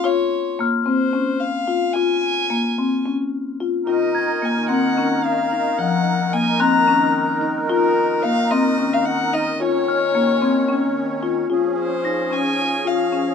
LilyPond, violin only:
\new Staff \with { instrumentName = "Violin" } { \time 7/8 \key des \major \tempo 4 = 110 des''4 r8 c''4 f''4 | aes''2 r4. | ees''4 aes''8 ges''4 f''4 | ges''4 aes''8 bes''4. r8 |
bes'4 f''8 ees''8. f''16 ges''8 ees''8 | des''2. r8 | r8 c''4 aes''4 f''4 | }